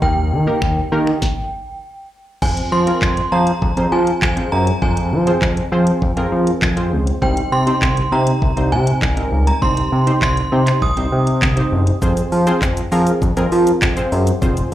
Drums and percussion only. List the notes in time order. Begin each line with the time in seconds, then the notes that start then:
0.02 kick
0.62 finger snap, kick
1.07 finger snap
1.22 kick, snare
2.42 kick, crash
2.57 closed hi-hat
2.87 closed hi-hat
3.02 kick, clap
3.17 closed hi-hat
3.47 closed hi-hat
3.62 kick
3.77 closed hi-hat
4.07 closed hi-hat
4.22 kick, clap
4.37 closed hi-hat
4.67 closed hi-hat
4.82 kick
4.97 closed hi-hat
5.27 closed hi-hat
5.42 kick, clap
5.57 closed hi-hat
5.87 closed hi-hat
6.02 kick
6.17 closed hi-hat
6.47 closed hi-hat
6.62 kick, clap
6.77 closed hi-hat
7.07 closed hi-hat
7.22 kick
7.37 closed hi-hat
7.67 closed hi-hat
7.82 kick, clap
7.97 closed hi-hat
8.27 closed hi-hat
8.42 kick
8.57 closed hi-hat
8.87 closed hi-hat
9.02 kick, clap
9.17 closed hi-hat
9.47 closed hi-hat
9.62 kick
9.77 closed hi-hat
10.07 closed hi-hat
10.22 kick, clap
10.37 closed hi-hat
10.67 clap, closed hi-hat
10.82 kick
10.97 closed hi-hat
11.27 closed hi-hat
11.42 kick, clap
11.57 closed hi-hat
11.87 closed hi-hat
12.02 kick, shaker
12.17 closed hi-hat, shaker
12.32 open hi-hat, shaker
12.47 closed hi-hat, shaker
12.62 kick, clap, shaker
12.77 closed hi-hat, shaker
12.92 open hi-hat, shaker
13.07 closed hi-hat, shaker
13.22 kick, shaker
13.37 closed hi-hat, shaker
13.52 open hi-hat, shaker
13.67 closed hi-hat, shaker
13.82 kick, clap, shaker
13.97 closed hi-hat, shaker
14.12 open hi-hat, shaker
14.27 closed hi-hat, shaker
14.42 kick, shaker
14.57 closed hi-hat, shaker